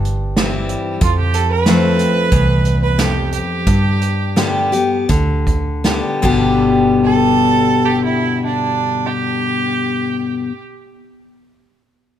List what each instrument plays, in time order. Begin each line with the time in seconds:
Already playing: fingered electric bass G1, steel-string acoustic guitar G2
0.05 closed hi-hat
0.36 steel-string acoustic guitar E3 G3 C4 E4, snare, closed hi-hat
0.69 closed hi-hat
1.01 steel-string acoustic guitar F2, fingered electric bass F2, fiddle F4, kick, closed hi-hat
1.19 fiddle G4
1.34 fiddle A4, closed hi-hat
1.51 fiddle B4
1.66 steel-string acoustic guitar F3 A3 C4 F4, snare, closed hi-hat
1.99 closed hi-hat
2.32 fingered electric bass C2, steel-string acoustic guitar E2, kick, closed hi-hat
2.65 closed hi-hat
2.83 fiddle B4
2.98 steel-string acoustic guitar F2, fiddle G4, snare, closed hi-hat
3.32 fiddle G4, closed hi-hat
3.67 fingered electric bass G2, steel-string acoustic guitar G2, kick, closed hi-hat
4.01 closed hi-hat
4.36 steel-string acoustic guitar D3 G3 B3 G4, snare, closed hi-hat
4.72 steel-string acoustic guitar B3 G4, closed hi-hat
5.09 fingered electric bass D2, steel-string acoustic guitar D3, kick, closed hi-hat
5.47 kick, closed hi-hat
5.84 steel-string acoustic guitar D3 G3 B3 G4, snare, closed hi-hat
6.22 fingered electric bass G1, steel-string acoustic guitar G2 B2 D3 G3 B3 G4, kick, crash
7.04 fiddle A4
7.85 fiddle G4
8.05 fiddle E4
8.46 fiddle D4
9.07 fiddle G4